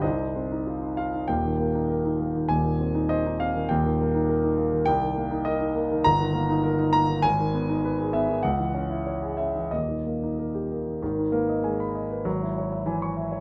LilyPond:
\new Staff \with { instrumentName = "Grand piano" } { \time 2/4 \key c \minor \tempo 4 = 100 << { <ees' c'' ees''>4. f''8 | \key ees \major g''2 | aes''4 ees''8 f''8 | g''2 |
g''4 ees''8 r8 | \key gis \minor ais''4. ais''8 | gis''4. e''8 | fis''4. e''8 |
dis''4 r4 | dis8 ais8 gis4 | fis4 e4 | } \\ { c,16 ees'16 c'16 ees'16 f'16 ees'16 f'16 ees'16 | <ees,, ees,>16 ees16 bes16 ees'16 bes'16 ees'16 bes16 ees16 | <ees,, ees,>16 ees16 c'16 ees'16 c''16 ees'16 c'16 ees16 | <ees,, ees,>16 ees16 bes16 ees'16 bes'16 ees'16 bes16 ees16 |
c,16 ees16 bes16 ees'16 bes'16 ees'16 bes16 ees16 | g,,16 dis16 ais16 dis'16 ais'16 dis'16 ais16 dis16 | gis,,16 dis16 b16 dis'16 b'16 gis'16 b16 dis16 | cis,16 e16 cis'16 e'16 cis''16 gis'16 cis'16 e16 |
<dis,, dis,>16 dis16 ais16 dis'16 ais'16 g'16 ais16 dis16 | gis,,16 dis'16 b'16 dis''16 gis''16 b''16 dis''16 b'16 | gis,,16 e'16 cis''16 e''16 gis''16 cis'''16 e''16 cis''16 | } >> }